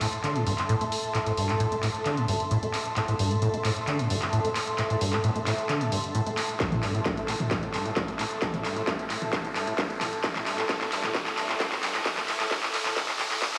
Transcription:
Already playing: A4 E5 A5 C6, riser
0.01 A2, clap, open hi-hat
0.13 closed hi-hat
0.24 D3, clap, closed hi-hat
0.36 A2, closed hi-hat
0.47 G2, open hi-hat
0.58 clap, closed hi-hat
0.69 A2, closed hi-hat
0.81 A3, closed hi-hat
0.92 open hi-hat
1.04 closed hi-hat
1.15 A2, clap, closed hi-hat
1.26 A2, closed hi-hat
1.37 G2, open hi-hat
1.49 A2, clap, closed hi-hat
1.60 A2, closed hi-hat
1.72 A3, closed hi-hat
1.83 A2, clap, open hi-hat
1.95 closed hi-hat
2.06 D3, clap, closed hi-hat
2.17 A2, closed hi-hat
2.28 G2, open hi-hat
2.40 closed hi-hat
2.51 A2, closed hi-hat
2.63 A3, closed hi-hat
2.74 clap, open hi-hat
2.86 closed hi-hat
2.96 A2, clap, closed hi-hat
3.08 A2, closed hi-hat
3.19 G2, open hi-hat
3.31 A2, closed hi-hat
3.42 A2, closed hi-hat
3.54 A3, closed hi-hat
3.65 A2, clap, open hi-hat
3.76 closed hi-hat
3.87 D3, clap, closed hi-hat
3.99 A2, closed hi-hat
4.10 G2, open hi-hat
4.22 clap, closed hi-hat
4.33 A2, closed hi-hat
4.45 A3, closed hi-hat
4.56 clap, open hi-hat
4.67 closed hi-hat
4.78 A2, clap, closed hi-hat
4.90 A2, closed hi-hat
5.01 G2, open hi-hat
5.13 A2, clap
5.24 A2, closed hi-hat
5.36 A3, closed hi-hat
5.47 A2, clap, open hi-hat
5.58 closed hi-hat
5.69 D3, clap, closed hi-hat
5.81 A2, closed hi-hat
5.92 G2, open hi-hat
6.04 closed hi-hat
6.15 A2, closed hi-hat
6.27 A3, closed hi-hat
6.37 clap, open hi-hat
6.49 closed hi-hat
6.60 A2, kick, clap, closed hi-hat
6.72 A2, closed hi-hat, mid tom
6.83 G2, clap, open hi-hat
6.95 A2, closed hi-hat
7.06 G2, kick, clap, closed hi-hat
7.17 A3, closed hi-hat
7.28 A2, clap, open hi-hat
7.40 closed hi-hat, mid tom
7.51 A2, kick, clap, closed hi-hat
7.63 A2, closed hi-hat
7.74 G2, clap, open hi-hat
7.86 A2, closed hi-hat
7.96 G2, kick, clap, closed hi-hat
8.08 A3, closed hi-hat
8.19 A2, clap, open hi-hat
8.31 closed hi-hat
8.42 A2, kick, clap, closed hi-hat
8.54 A2, closed hi-hat, mid tom
8.65 G2, clap, open hi-hat
8.77 A2, closed hi-hat
8.87 G2, kick, clap, closed hi-hat
8.99 A3, closed hi-hat
9.10 A2, clap, open hi-hat
9.22 closed hi-hat, mid tom
9.33 A2, kick, clap, closed hi-hat
9.45 A2, closed hi-hat
9.56 G2, clap, open hi-hat
9.67 A2, closed hi-hat
9.78 G2, kick, clap, closed hi-hat
9.90 A3, closed hi-hat
10.01 A2, clap, mid tom, open hi-hat
10.13 closed hi-hat
10.24 A2, kick, clap, closed hi-hat
10.36 A2, clap, closed hi-hat, mid tom
10.47 G2, clap, open hi-hat
10.58 A2, clap, closed hi-hat
10.69 A2, kick, clap, closed hi-hat
10.81 A2, clap, closed hi-hat
10.92 G2, clap, open hi-hat
11.04 A2, clap, closed hi-hat, mid tom
11.15 A2, kick, clap, closed hi-hat
11.26 A2, clap, closed hi-hat
11.37 G2, clap, open hi-hat
11.49 A2, clap, closed hi-hat
11.60 A2, kick, clap, closed hi-hat
11.72 A2, clap, closed hi-hat
11.83 G2, clap, open hi-hat
11.95 A2, clap, closed hi-hat
12.06 A2, kick, clap, closed hi-hat
12.17 A2, clap, closed hi-hat, mid tom
12.28 A2, clap, open hi-hat
12.40 A2, clap, closed hi-hat
12.51 A2, kick, clap, closed hi-hat
12.63 A2, clap, closed hi-hat
12.74 A2, clap, open hi-hat
12.86 A2, clap, closed hi-hat, mid tom
12.96 A2, kick, clap, closed hi-hat
13.08 A2, clap, closed hi-hat
13.19 A2, clap, mid tom, open hi-hat
13.31 A2, clap, closed hi-hat
13.42 A2, kick, clap, closed hi-hat
13.54 A2, clap, closed hi-hat

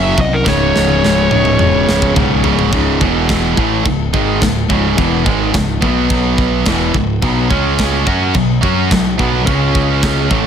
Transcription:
Already playing: F#1 F#2 C#3 F#3 E5
0.17 C2 F#2 C#3 F#3 D#5, kick
0.34 A#4
0.45 C#1 C#2 G#2 C#3 C#5, kick, snare
0.73 C#1 C#2 G#2 C#3, snare
0.89 high tom
1.02 C#1 C#2 G#2 C#3, snare
1.30 C#1 C#2 G#2 C#3, mid tom
1.45 mid tom
1.58 E1 C#2 G#2 C#3, mid tom
1.86 C#1 C#2 G#2 C#3, snare
2.02 kick
2.15 B1 C#2 G#2 C#3, kick, floor tom
2.43 C#1 C#2 G#2 C#3, floor tom
2.59 floor tom
2.72 C#1 C#2 G#2 C#3, kick, china
3.00 E1 E2 B2 E3, kick
3.29 kick, snare, china
3.57 A1 A2 E3 A3, kick
3.85 C#1 C#2 G#2, kick, china
4.13 G#1 G#2 D#3 G#3, kick
4.42 C#1 C#2 G#2, kick, snare, china
4.69 C#1 C#2 G#2 C#3, kick
4.96 E1 E2 B2 E3, kick, china
5.25 G#1 G#2 D#3 G#3, kick
5.53 C#1 C#2 G#2, kick, snare, china
5.81 B1 B2 F#3 B3, kick
6.10 kick, china
6.38 kick
6.65 E1 E2 B2 E3, kick, snare, china
6.94 C#1 C#2 G#2, kick
7.22 B1 B2 F#3 B3, kick, china
7.50 C#2 C#3 G#3 C#4, kick
7.79 kick, snare, china
8.06 F#2 F#3 C#4 F#4, kick
8.34 B1 B2 F#3, kick, china
8.62 F#2 F#3 C#4 F#4, kick
8.91 B1 B2 F#3, kick, snare, china
9.19 B1 B2 F#3 B3, kick
9.47 C#2 C#3 G#3 C#4, kick, china
9.75 kick
10.03 kick, snare, china
10.30 A1 A2 E3 A3, kick

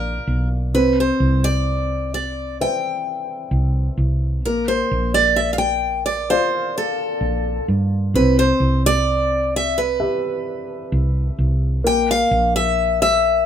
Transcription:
Already playing: A#1 A#3 A#4 D5 F5
0.27 B1
0.74 C2 C4 B4
1.00 C5
1.20 C2
1.44 D5
2.14 D5
2.61 B4 C5 E5 G5
3.51 C2
3.98 C2
4.45 A#1 A#3 A#4
4.68 C5
4.91 A#1
5.14 D5
5.36 E5
5.53 F5
5.58 G5
6.06 D5
6.30 F4 C5 D5 F5
6.78 A4
7.21 A#1
7.68 G2
8.14 C2 C4 B4
8.39 C5
8.60 C2
8.86 D5
9.56 E5
9.78 B4
10.00 G4 B4 E5
10.92 C2
11.39 C2
11.84 A#1 A#3 G5
12.11 F5
12.31 A#1
12.56 E5
13.02 E5

